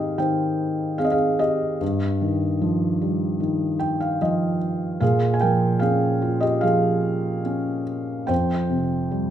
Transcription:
felt piano
Already playing: G#2 D#3 C4 D#4 G4 G#4 A#4 D#5 F5 G5
0.18 D#3 C5 G5
0.98 C4 G#4 F5
1.04 D#5
1.11 G#4 F5
1.39 G4 D#5
1.81 G2
2.22 D#3
2.62 F3
3.02 G3
3.40 D#3
3.79 G5
4.00 F5
4.22 F3 D#5
5.00 A#2 G#4 F5
5.34 G#5
5.40 F3 A#4 G5
5.79 C#4 G#4 F5
6.22 F4
6.40 G4 D#5
6.61 F3 G#4 F5
7.45 C#4
8.27 F2 C5 G5
8.70 C3
9.11 G3

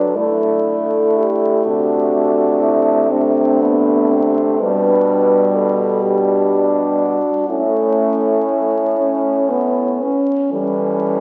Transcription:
french horn
Already playing: D3 F#3 D4 B4
0.16 A3 E4 A4
1.18 G4
1.66 C3 D4 F#4
2.61 E4
3.10 A3 C4 D4
3.61 B3
4.11 C4
4.60 B2 G3 D4 B4
5.56 A4
6.02 D4 G4
7.00 F#4
7.49 A2 A3 C#4 E4
8.98 C#4
9.50 B3
10.01 C#4
10.52 E3 G3 C#4 A4

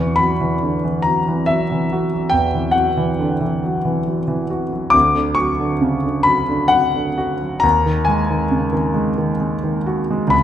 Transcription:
grand piano
Already playing: E2 E3 C#6
0.16 F#3 B5
0.41 E3
0.63 D3
0.85 E3
1.02 F#3 A#5
1.28 E3
1.46 F#3 E5
1.72 E3
1.92 F#4
2.13 F#3
2.30 E2 G5
2.55 E3
2.71 F#5
2.76 F#3
2.97 E3
3.19 D3
3.41 E3
3.64 F#3
3.85 E3
4.06 F#3
4.28 E3
4.50 F#4
4.72 F#3
4.90 D2 D6
5.15 D3
5.35 F#3 C#6
5.60 D3
5.81 C#3
6.04 D3
6.23 F#3 B5
6.49 D3
6.68 F#3 F#5
6.95 D3
7.18 F#4
7.41 F#3
7.60 D#2 A#5
7.86 D#3
8.05 G#3 G#5
8.30 D#3
8.51 C#3
8.73 D#3
8.94 G#3
9.18 D#3
9.40 G#3
9.64 D#3
9.87 F#4
10.11 G#3
10.27 C#2 B5

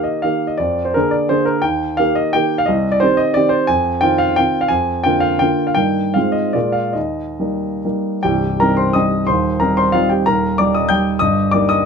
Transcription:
grand piano
Already playing: D#3 A#3 G4
0.04 D#5
0.22 D#3 A#3 G4 F5
0.47 D#5
0.58 F2 D5
0.85 C5
0.94 D3 A#3 G#4 A#4
1.11 D5
1.29 D3 A#3 G#4 C5
1.45 A#4
1.62 D#2 G5
1.97 D#3 A#3 G4 F5
2.15 D#5
2.33 D#3 A#3 G4 G5
2.58 F5
2.66 C2 D#5
2.92 D5
3.00 D#3 C4 G4 C5
3.17 D#5
3.34 D#3 C4 G4 D5
3.49 C5
3.67 F2 G#5
4.01 D#3 C4 F4 G5
4.18 F5
4.36 D#3 C4 F4 G5
4.61 F5
4.68 F2 G#5
5.04 D3 A#3 F4 G5
5.20 F5
5.39 D3 A#3 F4 G5
5.67 F5
5.75 G2 D#3 A#3 D#4 G5
6.14 G#2 G#3 C4 F4 F5
6.32 D#5
6.53 A#2 G#3 A#3 F4 D5
6.72 F5
6.93 D#2 D#5
7.39 G3 A#3 D#4
7.85 G3 A#3 D#4
8.23 C1 C2 G4 G5
8.60 G3 C4 D#4 A#4 A#5
8.77 C5 C6
8.93 G3 C4 D#4 D#5 D#6
9.27 D#1 D#2 C5 C6
9.60 G3 C4 D#4 A#4 A#5
9.77 C5 C6
9.92 G3 C4 D#4 F4 F5
10.10 G4 G5
10.26 D#1 D#2 A#4 A#5
10.58 G3 D#4 D5 D6
10.74 D#5 D#6
10.89 G3 D#4 G5 G6
11.19 G1 G2 D#5 D#6
11.51 G3 A#3 D#4 D5 D6
11.69 D#5 D#6

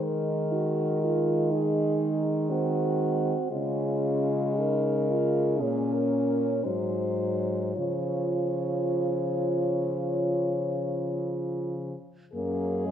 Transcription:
french horn
Already playing: D#3 G#3 D#4
0.04 A#4
0.52 F#4
1.03 F4
1.52 D#4 G#4
2.51 C4 F#4
3.52 C#3 G#3 C#4 F4
4.58 D#4 A#4
5.10 F4
5.60 A#2 C#4 G#4
5.94 A#4
6.64 G#2 F#3 D#4 C5
7.76 C#3 F3 F4 C#5
12.33 F#2 A#3 C#4 G#4
12.86 G#3

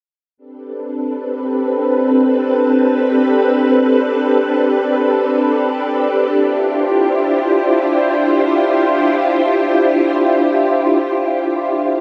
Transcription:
string machine
0.37 C4 D4 G4 A4 B4
6.27 E4 F4 C5

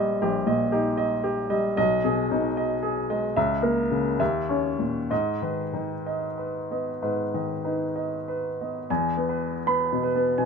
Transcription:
grand piano
Already playing: A#1 A#2 G3 D#4 G4 D#5
0.22 A#1 G4
0.46 A#2 D#5
0.72 D#4 G4
0.97 D#5
1.24 G4
1.50 G3 D#5
1.77 B1 D#5
2.04 B2 G#4
2.31 B2 D#4
2.57 D#5
2.83 G#4
3.10 G#3 D#5
3.36 C#2 E5
3.62 A#3 A#4
3.91 C#3
4.19 D#2 E5
4.49 C#4 C#5
4.79 A#2
5.10 G#2 D#5
5.42 D#3 B4
5.73 D#3 D#4
6.06 D#5
6.38 B4
6.71 B3 D#5
7.02 G#2 B4
7.34 D#3 D#5
7.64 D#4 B4
7.96 D#5
8.28 B4
8.61 B3 D#5
8.90 E2 G#5
9.17 B3
9.29 B4
9.67 B3 B5
9.93 B2
10.03 B4
10.15 B3
10.38 B2 G#5

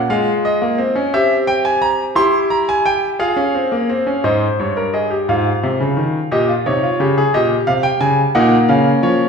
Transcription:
grand piano
0.10 G#3 F4 F5
0.45 D#5
0.62 A#3
0.78 C4
0.95 C#4
1.14 C4 G4 E5
1.47 G5
1.65 G#5
1.82 A#5
2.15 E4 G4 C6
2.50 A#5
2.69 G#5
2.86 G5
3.19 F4 G#4 F5
3.36 C#4
3.55 C4
3.72 A#3
3.90 C4
4.07 C#4
4.24 G#2 C5 D#5
4.60 G2 C#5
4.77 A#4
4.94 G#4 D#5
5.10 G4
5.29 G#2 F4 F5
5.63 C3
5.80 C#3
5.97 D#3
6.31 A#2 G4 D#5
6.49 F4
6.66 C3 D#4 C#5
6.83 F4
7.00 C#3 G4
7.18 G#4
7.34 A#2 G4 D#5
7.67 C3 F5
7.83 G5
8.01 C#3 G#5
8.35 A#2 A#3 D#4 F#5
8.69 C#3 C#4 F5
9.03 F3 C#5

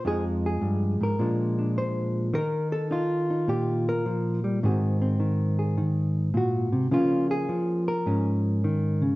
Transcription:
hollow-body jazz guitar
0.05 F2 F3 G#3 D#4 G#4
0.46 G#4
0.61 G2
1.01 G#2 A#4
1.19 A#2 F3 G#3 D4
1.59 D4
1.78 C5
2.34 D#3 D#4 A#4
2.72 A4
2.91 D#4 F4
3.30 D#4
3.48 A#2 G4
3.89 A#4
4.06 F3
4.44 G3
4.63 G#2 D#3 C4 F#4 G#4
5.02 C4
5.20 D#3
5.59 G#4
5.78 D#3
6.34 A#2 F#4
6.72 C3
6.91 C#3 F3 A#3 C#4 F4
7.31 G#4
7.49 F3
7.88 A#4
8.06 G#2 C#4
8.64 D#3
9.02 C#3

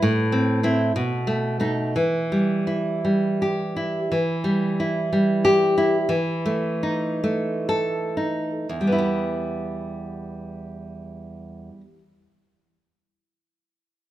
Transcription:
nylon-string guitar
0.02 A2
0.32 C4
0.63 C4 E4
0.96 B2
1.27 A3
1.60 A3 D#4
1.96 E3
2.32 G3
2.67 E4
3.05 G3
3.42 G4
3.76 E4
4.12 E3
4.44 G3
4.80 E4
5.13 G3
5.45 G4
5.78 E4
6.09 E3
6.46 A3
6.83 D#4
7.24 A3
7.69 A4
8.17 D#4
8.69 E2
8.81 G3
8.87 B3
8.92 E4
8.98 G4

